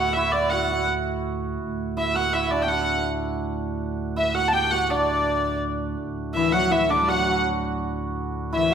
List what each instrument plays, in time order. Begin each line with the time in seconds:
Already playing: pipe organ D2 A2, hammered dulcimer C4 D4 E4, hurdy-gurdy F#5
0.00 hammered dulcimer F#4
0.13 hammered dulcimer E4, hurdy-gurdy E5
0.32 hurdy-gurdy D5
0.49 hammered dulcimer F#4, hurdy-gurdy F#5
0.71 hammered dulcimer F#4
1.60 pipe organ D2 A2
1.97 hammered dulcimer E4, hurdy-gurdy E5
2.14 hammered dulcimer F#4, hurdy-gurdy F#5
2.33 hammered dulcimer E4, hurdy-gurdy E5
2.51 hammered dulcimer D4, hurdy-gurdy D5
2.62 hurdy-gurdy G5
2.68 hammered dulcimer F#4, hurdy-gurdy F#5
4.16 hammered dulcimer E4, hurdy-gurdy E5
4.34 hammered dulcimer F#4, hurdy-gurdy F#5
4.48 hurdy-gurdy A5
4.52 hammered dulcimer G4, hurdy-gurdy G5
4.71 hammered dulcimer F#4, hurdy-gurdy F#5
4.90 hammered dulcimer D4, hurdy-gurdy D5
5.98 pipe organ D2 A2
6.34 viola da gamba E3, hammered dulcimer E4, hurdy-gurdy E5
6.52 viola da gamba F#3, hammered dulcimer F#4, hurdy-gurdy F#5
6.70 viola da gamba E3, hammered dulcimer E4, hurdy-gurdy E5
6.88 viola da gamba D3, hammered dulcimer D4, hurdy-gurdy D5
7.00 viola da gamba G3
7.08 viola da gamba F#3, hammered dulcimer F#4, hurdy-gurdy F#5
7.19 hammered dulcimer F#4
7.32 hammered dulcimer F#4
8.52 viola da gamba E3, hammered dulcimer E4, hurdy-gurdy E5
8.70 hammered dulcimer F#4